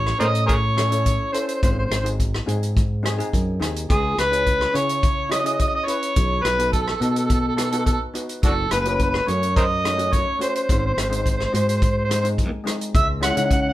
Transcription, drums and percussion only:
0.07 cross-stick medium
0.20 closed hi-hat medium
0.35 closed hi-hat medium
0.49 kick loud
0.49 closed hi-hat medium
0.78 cross-stick medium
0.78 closed hi-hat medium
0.92 closed hi-hat medium
1.06 kick medium
1.06 closed hi-hat medium
1.34 closed hi-hat medium
1.49 closed hi-hat medium
1.63 kick loud
1.63 closed hi-hat medium
1.92 cross-stick medium
1.92 closed hi-hat medium
2.06 closed hi-hat medium
2.20 kick medium
2.20 closed hi-hat medium
2.34 cross-stick medium
2.48 closed hi-hat medium
2.63 closed hi-hat medium
2.77 kick loud
2.77 closed hi-hat soft
3.06 cross-stick medium
3.06 closed hi-hat medium
3.20 closed hi-hat soft
3.33 kick medium
3.33 closed hi-hat soft
3.62 cross-stick medium
3.62 closed hi-hat medium
3.76 closed hi-hat medium
3.90 kick loud
3.90 closed hi-hat medium
4.19 cross-stick medium
4.19 closed hi-hat medium
4.33 closed hi-hat soft
4.46 kick medium
4.46 closed hi-hat medium
4.61 cross-stick medium
4.75 closed hi-hat medium
4.89 closed hi-hat medium
5.03 kick loud
5.03 closed hi-hat medium
5.32 cross-stick medium
5.32 closed hi-hat medium
5.46 closed hi-hat medium
5.60 kick medium
5.60 closed hi-hat medium
5.88 closed hi-hat medium
6.03 closed hi-hat medium
6.16 kick loud
6.16 closed hi-hat medium
6.45 cross-stick medium
6.45 closed hi-hat medium
6.59 closed hi-hat medium
6.73 kick medium
6.73 closed hi-hat medium
6.88 cross-stick medium
7.02 closed hi-hat medium
7.16 closed hi-hat medium
7.30 kick medium
7.30 closed hi-hat medium
7.58 cross-stick medium
7.58 closed hi-hat medium
7.72 closed hi-hat medium
7.86 kick medium
7.86 closed hi-hat soft
8.15 closed hi-hat medium
8.29 closed hi-hat medium
8.43 kick loud
8.43 closed hi-hat medium
8.71 cross-stick medium
8.71 closed hi-hat medium
8.85 closed hi-hat medium
8.99 kick medium
8.99 closed hi-hat soft
9.14 cross-stick medium
9.28 closed hi-hat medium
9.43 closed hi-hat soft
9.56 kick loud
9.56 closed hi-hat medium
9.85 cross-stick medium
9.85 closed hi-hat medium
9.99 closed hi-hat medium
10.13 kick medium
10.13 closed hi-hat medium
10.41 closed hi-hat medium
10.56 closed hi-hat medium
10.69 kick medium
10.69 closed hi-hat medium
10.98 cross-stick medium
10.98 closed hi-hat medium
11.12 closed hi-hat medium
11.26 kick medium
11.26 closed hi-hat medium
11.40 cross-stick medium
11.55 closed hi-hat medium
11.69 closed hi-hat medium
11.82 kick loud
11.82 closed hi-hat medium
12.11 cross-stick medium
12.11 closed hi-hat medium
12.25 closed hi-hat medium
12.38 kick medium
12.38 closed hi-hat soft
12.67 cross-stick medium
12.67 closed hi-hat medium
12.81 closed hi-hat medium
12.95 kick loud
12.95 closed hi-hat medium
13.23 cross-stick medium
13.23 closed hi-hat medium
13.37 closed hi-hat medium
13.51 kick medium
13.51 closed hi-hat medium

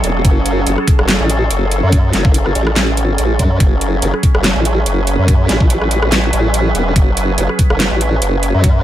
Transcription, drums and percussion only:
0.04 closed hi-hat medium
0.25 kick loud
0.25 closed hi-hat medium
0.46 closed hi-hat medium
0.67 closed hi-hat medium
0.78 cross-stick medium
0.88 kick loud
0.88 closed hi-hat medium
0.99 cross-stick medium
1.08 snare loud
1.08 clap medium
1.08 closed hi-hat medium
1.30 closed hi-hat medium
1.51 closed hi-hat medium
1.71 closed hi-hat medium
1.92 kick loud
1.92 closed hi-hat medium
2.13 snare medium
2.13 closed hi-hat medium
2.25 kick loud
2.34 closed hi-hat medium
2.46 cross-stick medium
2.55 closed hi-hat soft
2.67 cross-stick medium
2.76 snare loud
2.76 clap medium
2.76 closed hi-hat medium
2.97 closed hi-hat medium
3.18 closed hi-hat medium
3.39 kick medium
3.39 closed hi-hat soft
3.60 kick loud
3.60 closed hi-hat medium
3.81 closed hi-hat medium
4.02 closed hi-hat medium
4.14 cross-stick medium
4.23 kick loud
4.23 closed hi-hat soft
4.35 cross-stick medium
4.44 snare loud
4.44 clap medium
4.44 closed hi-hat medium
4.65 closed hi-hat medium
4.86 closed hi-hat medium
5.07 closed hi-hat soft
5.28 kick loud
5.28 closed hi-hat medium
5.49 snare medium
5.49 closed hi-hat medium
5.60 kick loud
5.70 closed hi-hat medium
5.81 cross-stick medium
5.91 closed hi-hat medium
6.02 cross-stick medium
6.12 snare loud
6.12 clap medium
6.12 closed hi-hat medium
6.33 closed hi-hat medium
6.54 closed hi-hat medium
6.75 closed hi-hat soft
6.96 kick loud
6.96 closed hi-hat medium
7.17 closed hi-hat medium
7.38 closed hi-hat medium
7.49 cross-stick medium
7.59 kick loud
7.59 closed hi-hat medium
7.70 cross-stick medium
7.80 snare loud
7.80 clap medium
7.80 closed hi-hat medium
8.01 closed hi-hat medium
8.22 closed hi-hat medium
8.43 closed hi-hat medium
8.64 kick loud
8.64 closed hi-hat medium

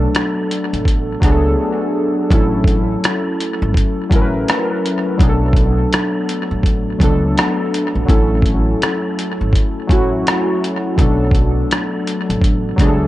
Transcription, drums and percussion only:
0.15 cross-stick loud
0.15 closed hi-hat medium
0.51 closed hi-hat medium
0.74 closed hi-hat soft
0.85 kick medium
0.85 closed hi-hat medium
1.22 kick medium
1.22 cross-stick soft
1.22 closed hi-hat medium
2.31 kick loud
2.31 closed hi-hat medium
2.64 kick loud
2.64 closed hi-hat medium
3.04 cross-stick loud
3.04 closed hi-hat medium
3.40 closed hi-hat medium
3.74 kick medium
3.74 closed hi-hat medium
4.11 kick loud
4.11 closed hi-hat medium
4.48 cross-stick loud
4.48 closed hi-hat medium
4.86 closed hi-hat medium
5.19 kick loud
5.19 closed hi-hat medium
5.53 kick medium
5.53 closed hi-hat medium
5.93 cross-stick loud
5.93 closed hi-hat medium
6.29 closed hi-hat medium
6.63 kick medium
6.63 closed hi-hat medium
7.00 kick medium
7.00 closed hi-hat medium
7.38 cross-stick loud
7.38 closed hi-hat medium
7.74 closed hi-hat medium
8.09 kick loud
8.09 closed hi-hat medium
8.42 kick medium
8.42 closed hi-hat medium
8.82 cross-stick loud
8.82 closed hi-hat medium
9.19 closed hi-hat medium
9.53 kick medium
9.53 closed hi-hat medium
9.89 kick medium
9.89 closed hi-hat medium
10.27 cross-stick loud
10.27 closed hi-hat medium
10.64 closed hi-hat medium
10.98 kick medium
10.98 closed hi-hat medium
11.31 kick loud
11.31 closed hi-hat medium
11.71 cross-stick loud
11.71 closed hi-hat medium
12.07 closed hi-hat medium
12.30 closed hi-hat medium
12.41 kick medium
12.41 closed hi-hat medium
12.78 kick medium
12.78 cross-stick soft
12.78 closed hi-hat medium

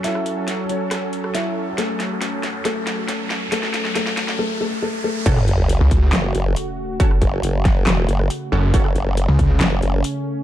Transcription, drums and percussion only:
0.04 snare medium
0.04 closed hi-hat medium
0.15 cross-stick soft
0.26 closed hi-hat medium
0.48 snare medium
0.48 closed hi-hat medium
0.69 closed hi-hat medium
0.91 cross-stick medium
0.91 snare medium
0.91 closed hi-hat medium
1.13 closed hi-hat medium
1.24 cross-stick medium
1.35 snare medium
1.35 closed hi-hat medium
1.78 snare medium
1.78 closed hi-hat medium
2.00 snare medium
2.00 closed hi-hat medium
2.22 snare medium
2.22 closed hi-hat medium
2.43 snare medium
2.43 closed hi-hat medium
2.65 snare medium
2.65 closed hi-hat medium
2.87 snare medium
2.87 closed hi-hat medium
3.08 snare medium
3.08 closed hi-hat medium
3.30 snare medium
3.52 snare medium
3.52 closed hi-hat medium
3.63 snare medium
3.74 snare medium
3.74 closed hi-hat medium
3.85 snare medium
3.95 snare medium
3.95 closed hi-hat medium
4.07 snare medium
4.17 snare loud
4.17 closed hi-hat soft
4.28 snare medium
5.26 kick loud
5.26 closed hi-hat medium
5.26 crash loud
5.37 cross-stick medium
5.48 closed hi-hat medium
5.69 closed hi-hat medium
5.91 kick medium
5.91 closed hi-hat medium
6.13 snare loud
6.13 clap medium
6.13 closed hi-hat medium
6.35 closed hi-hat medium
6.56 closed hi-hat medium
7.00 kick loud
7.00 closed hi-hat medium
7.11 cross-stick medium
7.22 kick medium
7.22 closed hi-hat medium
7.43 closed hi-hat medium
7.65 kick loud
7.65 snare medium
7.65 closed hi-hat medium
7.87 cross-stick medium
7.87 snare loud
7.87 clap loud
7.87 closed hi-hat medium
8.09 closed hi-hat medium
8.20 cross-stick medium
8.30 closed hi-hat medium
8.74 kick loud
8.74 closed hi-hat medium
8.85 cross-stick medium
8.96 closed hi-hat medium
9.17 closed hi-hat medium
9.39 kick medium
9.39 closed hi-hat medium
9.61 snare loud
9.61 clap medium
9.61 closed hi-hat medium
9.82 closed hi-hat medium
10.04 closed hi-hat medium

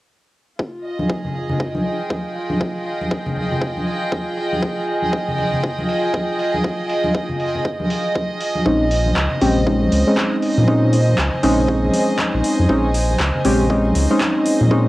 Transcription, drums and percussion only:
0.59 kick loud
0.84 open hi-hat loud
0.99 high conga medium
1.10 kick loud
1.25 low conga medium
1.35 open hi-hat loud
1.49 low conga loud
1.60 kick loud
1.75 high conga medium
1.85 open hi-hat loud
2.10 kick loud
2.10 high conga medium
2.36 open hi-hat loud
2.50 high conga medium
2.61 kick loud
2.86 open hi-hat loud
3.01 high conga medium
3.11 kick loud
3.26 low conga medium
3.36 open hi-hat loud
3.36 high conga medium
3.52 low conga medium
3.62 kick loud
3.77 high conga medium
3.87 open hi-hat loud
4.12 kick loud
4.12 high conga medium
4.37 open hi-hat loud
4.53 high conga medium
4.62 kick loud
4.88 open hi-hat loud
5.02 high conga medium
5.13 kick loud
5.28 low conga medium
5.38 open hi-hat loud
5.38 high conga medium
5.53 low conga medium
5.63 kick loud
5.78 high conga medium
5.89 open hi-hat loud
6.14 kick loud
6.14 high conga medium
6.39 open hi-hat loud
6.54 high conga medium
6.64 kick loud
6.89 open hi-hat loud
7.04 high conga loud
7.15 kick loud
7.29 low conga medium
7.40 open hi-hat loud
7.55 low conga medium
7.65 kick loud
7.80 high conga loud
7.90 open hi-hat loud
8.15 kick loud
8.15 high conga medium
8.41 open hi-hat loud
8.55 high conga medium
8.66 kick loud
8.91 open hi-hat loud
9.06 high conga medium
9.16 kick loud
9.16 clap loud
9.31 low conga medium
9.41 open hi-hat loud
9.41 high conga medium
9.57 low conga medium
9.67 kick loud
9.81 high conga medium
9.92 open hi-hat loud
10.17 kick loud
10.17 clap loud
10.17 high conga medium
10.42 open hi-hat loud
10.58 high conga loud
10.68 kick loud
10.93 open hi-hat loud
11.09 high conga medium
11.18 kick loud
11.18 clap loud
11.33 low conga medium
11.43 open hi-hat medium
11.58 low conga medium
11.68 kick loud
11.85 high conga medium
11.94 open hi-hat loud
12.19 kick loud
12.19 clap loud
12.19 high conga medium
12.44 open hi-hat loud
12.60 high conga medium
12.69 kick loud
12.95 open hi-hat medium
13.10 high conga medium
13.20 kick loud
13.20 clap loud
13.35 low conga medium
13.45 open hi-hat loud
13.45 high conga medium
13.60 low conga medium
13.70 kick loud
13.85 high conga medium
13.95 open hi-hat loud
14.20 kick loud
14.20 clap loud
14.20 high conga medium
14.46 open hi-hat medium
14.61 high conga medium
14.71 kick loud

